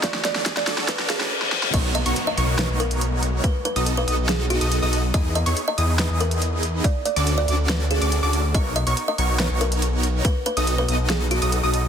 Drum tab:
CC |----------------|x---------------|----------------|----------------|
HH |x-x-x-x-x-x-----|x-xxx-x-x-xxx-x-|x-xxx-x-x-xxx-x-|x-xxx-x-x-xxx-x-|
SD |oooooooooooo-ooo|--------o-------|--------o-------|--------o-------|
BD |o---o---o-------|o---------------|o---------------|o---------------|

CC |----------------|----------------|----------------|
HH |x-xxx-x-x-xxx-x-|x-xxx-x-x-xxx-x-|x-xxx-x-x-xxx-x-|
SD |--------o-------|--------o-------|--------o-------|
BD |o---------------|o---------------|o---------------|